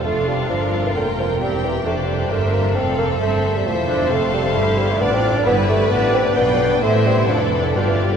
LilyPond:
<<
  \new Staff \with { instrumentName = "Violin section" } { \time 3/4 \key f \major \tempo 4 = 132 << { f''2 g''4 | g''4 d''4 e''4 | f''4 e''2 | \key d \dorian f''2 d''4 |
d''2 g''4 | e''4 d''4 d''4 | } \\ { f'4 bes'2~ | bes'4 a'4 g'4 | a'2.~ | a'2 d''4 |
b'2. | c''4 a'4 g'4 | } >> }
  \new Staff \with { instrumentName = "Violin section" } { \time 3/4 \key f \major f'2. | g'2 c''4 | a'2 c''4~ | \key d \dorian c''2 d''4 |
b'2 d''4 | c''4 a'4 g'4 | }
  \new Staff \with { instrumentName = "Viola section" } { \time 3/4 \key f \major << { a'2 bes'4 | g'4 c''4 bes'4 | a'4 c''4 c''4 | \key d \dorian a'4 g'4 f'4 |
g'4 g'4 d'4 | e'2 f'4 | } \\ { d'2 bes4 | c'4 d'2 | c'4 c'4 a8 d'8 | c'4 e'4 d'4 |
e'4 d'2 | c'4 d'4 d'4 | } >> }
  \new Staff \with { instrumentName = "Bassoon" } { \clef bass \time 3/4 \key f \major a8 g8 f8. e16 d8 f8 | g8 e8 a8 g8 a8 bes8 | c'8 bes8 a8. g16 f4 | \key d \dorian a8 g8 a8 g16 a16 b16 c'8 d'16 |
b8 a8 b8 c'8 b4 | a8 g8 f16 e8 d16 b,16 e8 d16 | }
  \new Staff \with { instrumentName = "Cello section" } { \clef bass \time 3/4 \key f \major f,4 g,4 f,4 | e,4 f,4 g,4 | f,4 g,4 e,4 | \key d \dorian f,4 g,4 a,4 |
g,4 a,4 b,4 | a,4 f,4 g,4 | }
  \new Staff \with { instrumentName = "Double bass section" } { \clef bass \time 3/4 \key f \major f,,4 g,,4 f,,4 | e,,4 f,,4 g,,4 | f,,4 g,,4 e,,4 | \key d \dorian f,,4 g,,4 a,,4 |
g,,4 a,,4 b,,4 | a,,4 f,,4 g,,4 | }
>>